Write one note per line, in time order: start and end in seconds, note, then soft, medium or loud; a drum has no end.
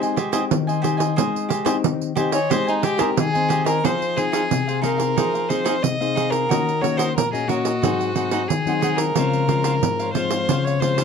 0.00 0.48 G#3 medium
0.00 0.16 C4 medium
0.00 0.16 D#4 medium
0.00 0.17 G4 medium
0.00 0.16 C5 soft
0.00 0.16 D#5 soft
0.00 0.17 G#5 medium
0.00 pandeiro soft
0.16 0.31 G4 medium
0.16 0.31 C5 medium
0.16 0.32 D#5 medium
0.16 0.32 G#5 medium
0.16 pandeiro medium
0.32 0.79 C4 medium
0.32 0.79 D#4 medium
0.32 0.43 G4 medium
0.32 0.79 G4 medium
0.32 0.43 C5 medium
0.32 0.43 D#5 medium
0.32 0.44 G#5 medium
0.32 pandeiro medium
0.51 1.15 D#3 medium
0.51 pandeiro medium
0.67 0.81 C5 soft
0.67 0.81 D#5 soft
0.67 0.82 G#5 soft
0.67 pandeiro soft
0.82 1.12 C4 medium
0.82 1.12 D#4 medium
0.82 0.99 G4 medium
0.82 1.13 G4 medium
0.82 0.98 C5 medium
0.82 0.97 D#5 medium
0.82 0.96 G#5 medium
0.82 pandeiro medium
0.97 1.15 C5 soft
0.97 1.15 D#5 soft
0.97 1.15 G#5 soft
0.97 pandeiro medium
1.16 1.81 G#3 medium
1.16 1.49 C4 medium
1.16 1.49 D#4 medium
1.16 1.48 C5 medium
1.16 1.49 D#5 medium
1.16 1.49 G#5 medium
1.16 pandeiro medium
1.36 pandeiro soft
1.49 1.63 G4 soft
1.49 1.64 C5 medium
1.49 1.64 D#5 medium
1.49 1.65 G#5 medium
1.49 pandeiro medium
1.65 2.12 C4 medium
1.65 2.12 D#4 medium
1.65 1.75 G4 medium
1.65 2.12 G4 medium
1.65 1.75 C5 medium
1.65 1.76 D#5 medium
1.65 1.76 G#5 medium
1.65 pandeiro medium
1.84 2.48 D#3 medium
1.84 pandeiro medium
2.01 pandeiro soft
2.15 2.38 C4 medium
2.15 2.38 D#4 medium
2.15 2.32 G4 medium
2.15 2.38 G4 medium
2.15 2.32 C5 medium
2.15 2.31 D#5 medium
2.15 2.30 G#5 medium
2.15 pandeiro medium
2.32 2.49 C5 soft
2.32 2.52 C#5 medium
2.32 2.49 D#5 soft
2.32 2.48 G#5 soft
2.32 pandeiro medium
2.50 3.14 G#3 medium
2.50 2.83 C4 medium
2.50 2.83 D#4 medium
2.50 2.66 G4 medium
2.50 2.83 G4 medium
2.50 2.66 C5 medium
2.50 2.71 C5 medium
2.50 2.66 D#5 medium
2.50 2.66 G#5 medium
2.50 pandeiro medium
2.67 2.85 D#4 medium
2.67 2.82 C5 soft
2.67 2.82 D#5 soft
2.67 2.83 G#5 medium
2.67 pandeiro soft
2.82 2.96 G4 soft
2.82 3.02 G4 medium
2.82 2.97 C5 medium
2.82 2.97 D#5 medium
2.82 2.98 G#5 medium
2.82 pandeiro medium
2.98 3.29 C4 medium
2.98 3.29 D#4 medium
2.98 3.08 G4 medium
2.98 3.29 G4 medium
2.98 3.17 A#4 medium
2.98 3.09 C5 medium
2.98 3.09 D#5 medium
2.98 3.09 G#5 medium
2.98 pandeiro medium
3.17 3.81 D#3 medium
3.17 3.64 G#4 loud
3.17 pandeiro medium
3.33 3.80 C4 medium
3.33 3.80 D#4 medium
3.33 3.48 C5 soft
3.33 3.48 D#5 soft
3.33 3.49 G#5 soft
3.33 pandeiro soft
3.48 3.65 G4 medium
3.48 3.65 C5 medium
3.48 3.65 D#5 medium
3.48 3.63 G#5 medium
3.48 pandeiro medium
3.65 3.87 A#4 medium
3.65 3.82 C5 soft
3.65 3.82 D#5 soft
3.65 3.81 G#5 medium
3.65 pandeiro medium
3.84 4.47 F3 medium
3.84 4.04 C4 soft
3.84 4.15 D#4 medium
3.84 4.04 D#4 soft
3.84 4.15 G#4 medium
3.84 4.04 G#4 medium
3.84 4.16 C5 medium
3.84 4.18 C5 medium
3.84 4.16 F5 medium
3.84 pandeiro medium
4.02 pandeiro soft
4.16 4.60 C4 soft
4.16 4.31 D#4 soft
4.16 4.60 D#4 soft
4.16 4.82 G#4 medium
4.16 4.31 G#4 soft
4.16 4.60 G#4 medium
4.16 4.31 C5 soft
4.16 4.32 F5 soft
4.16 pandeiro soft
4.32 4.42 D#4 medium
4.32 4.42 G#4 medium
4.32 4.42 C5 medium
4.32 4.42 F5 medium
4.32 pandeiro medium
4.51 5.14 C3 medium
4.51 pandeiro medium
4.67 4.81 G#4 soft
4.67 4.82 C5 soft
4.67 4.82 F5 soft
4.67 pandeiro soft
4.82 5.45 C4 soft
4.82 4.98 D#4 medium
4.82 5.45 D#4 medium
4.82 4.98 G#4 medium
4.82 5.45 G#4 medium
4.82 5.50 A#4 medium
4.82 4.98 C5 medium
4.82 4.96 F5 medium
4.82 pandeiro soft
4.98 5.15 G#4 soft
4.98 5.15 C5 soft
4.98 5.14 F5 soft
4.98 pandeiro medium
5.16 5.81 F3 medium
5.16 5.32 D#4 medium
5.16 5.33 G#4 medium
5.16 5.33 C5 medium
5.16 5.33 F5 medium
5.16 pandeiro medium
5.34 5.48 G#4 soft
5.34 5.49 C5 soft
5.34 5.49 F5 soft
5.34 pandeiro soft
5.49 5.95 C4 soft
5.49 5.63 D#4 soft
5.49 5.95 D#4 medium
5.49 5.64 G#4 soft
5.49 5.95 G#4 medium
5.49 5.84 C5 medium
5.49 5.64 C5 soft
5.49 5.65 F5 soft
5.49 pandeiro medium
5.65 5.75 D#4 medium
5.65 5.75 G#4 medium
5.65 5.75 C5 medium
5.65 5.75 F5 medium
5.65 pandeiro medium
5.83 6.47 C3 medium
5.83 6.32 D#5 medium
5.83 pandeiro medium
6.00 6.45 C4 medium
6.00 6.45 D#4 medium
6.00 6.15 G#4 soft
6.00 6.45 G#4 medium
6.00 6.15 C5 soft
6.00 6.15 F5 soft
6.00 pandeiro soft
6.15 6.48 D#4 medium
6.15 6.48 G#4 medium
6.15 6.48 C5 medium
6.15 6.49 F5 medium
6.15 pandeiro medium
6.31 6.83 A#4 medium
6.31 pandeiro medium
6.49 7.14 D#3 medium
6.49 6.70 A#3 soft
6.49 6.70 C#4 medium
6.49 6.80 F#4 medium
6.49 6.70 F#4 medium
6.49 6.81 A#4 medium
6.49 6.81 C#5 medium
6.49 6.82 D#5 medium
6.49 pandeiro medium
6.69 pandeiro soft
6.81 7.14 A#3 soft
6.81 7.14 C#4 soft
6.81 6.96 F#4 soft
6.81 7.15 F#4 medium
6.81 6.96 A#4 soft
6.81 6.99 C#5 medium
6.81 6.97 C#5 soft
6.81 6.97 D#5 soft
6.81 pandeiro medium
6.97 7.08 F#4 medium
6.97 7.08 A#4 medium
6.97 7.15 C5 medium
6.97 7.08 C#5 medium
6.97 7.08 D#5 medium
6.97 pandeiro medium
7.16 7.80 A#2 medium
7.16 7.32 A#4 medium
7.16 pandeiro medium
7.33 7.45 A#3 medium
7.33 7.45 C#4 medium
7.33 7.45 F#4 medium
7.33 7.49 G#4 medium
7.33 7.47 A#4 soft
7.33 7.48 C#5 soft
7.33 7.48 D#5 soft
7.33 pandeiro soft
7.48 7.70 A#3 soft
7.48 7.71 C#4 soft
7.48 8.49 F#4 medium
7.48 7.64 F#4 medium
7.48 7.71 F#4 medium
7.48 7.65 A#4 medium
7.48 7.64 C#5 medium
7.48 7.63 D#5 medium
7.48 pandeiro soft
7.64 7.82 A#4 soft
7.64 7.81 C#5 soft
7.64 7.81 D#5 soft
7.64 pandeiro medium
7.82 8.46 G#2 medium
7.82 8.11 F#3 medium
7.82 8.11 C4 soft
7.82 7.98 D#4 medium
7.82 8.11 D#4 soft
7.82 7.98 G#4 medium
7.82 7.99 C5 medium
7.82 7.98 F#5 medium
7.82 pandeiro medium
7.99 8.14 G#4 soft
7.99 8.15 C5 soft
7.99 8.15 F#5 medium
7.99 pandeiro soft
8.15 8.47 F#3 soft
8.15 8.47 C4 soft
8.15 8.31 D#4 soft
8.15 8.47 D#4 medium
8.15 8.31 G#4 soft
8.15 8.31 C5 medium
8.15 8.31 F#5 soft
8.15 pandeiro medium
8.31 8.41 D#4 medium
8.31 8.42 G#4 medium
8.31 8.42 C5 medium
8.31 8.42 F#5 medium
8.31 pandeiro medium
8.48 9.13 D#3 medium
8.48 8.98 G#4 medium
8.48 pandeiro medium
8.66 9.11 F#3 medium
8.66 9.11 C4 medium
8.66 9.11 D#4 medium
8.66 8.81 G#4 soft
8.66 8.81 C5 soft
8.66 8.81 F#5 soft
8.66 pandeiro soft
8.81 9.14 D#4 medium
8.81 9.14 G#4 medium
8.81 9.15 C5 medium
8.81 9.15 F#5 medium
8.81 pandeiro medium
8.96 10.12 A#4 medium
8.96 pandeiro medium
9.15 9.79 C#3 medium
9.15 9.44 F3 soft
9.15 9.44 G#3 soft
9.15 9.45 C4 medium
9.15 9.47 F4 medium
9.15 9.47 C5 medium
9.15 9.48 C#5 medium
9.15 9.48 F5 medium
9.15 pandeiro medium
9.33 pandeiro soft
9.48 10.10 F3 medium
9.48 10.10 G#3 medium
9.48 10.10 C4 medium
9.48 9.63 F4 soft
9.48 9.63 C5 soft
9.48 9.64 C#5 soft
9.48 9.64 F5 soft
9.48 pandeiro medium
9.64 9.74 F4 medium
9.64 9.74 C5 medium
9.64 9.75 C#5 medium
9.64 9.75 F5 medium
9.64 pandeiro medium
9.81 10.45 G#2 medium
9.81 pandeiro medium
9.99 10.14 C5 soft
9.99 10.15 C#5 soft
9.99 10.15 F5 soft
9.99 pandeiro soft
10.13 10.76 F3 medium
10.13 10.77 G#3 soft
10.13 10.76 C4 medium
10.13 10.31 F4 medium
10.13 10.66 C5 medium
10.13 10.31 C5 medium
10.13 10.30 C#5 medium
10.13 10.29 F5 medium
10.13 pandeiro medium
10.30 10.48 C5 soft
10.30 10.47 C#5 soft
10.30 10.47 F5 soft
10.30 pandeiro medium
10.48 11.04 C#3 medium
10.48 10.65 F4 medium
10.48 10.65 C5 medium
10.48 10.65 C#5 medium
10.48 10.65 F5 medium
10.48 pandeiro medium
10.64 10.82 C5 soft
10.64 10.81 C#5 medium
10.64 10.82 C#5 soft
10.64 10.82 F5 soft
10.64 pandeiro soft
10.80 11.04 F3 soft
10.80 11.04 G#3 medium
10.80 11.04 C4 soft
10.80 10.97 F4 soft
10.80 11.04 C5 medium
10.80 10.97 C5 medium
10.80 10.98 C#5 medium
10.80 10.98 F5 medium
10.80 pandeiro medium
10.98 11.04 F4 medium
10.98 11.04 C5 medium
10.98 11.04 C#5 medium
10.98 11.04 F5 medium
10.98 pandeiro medium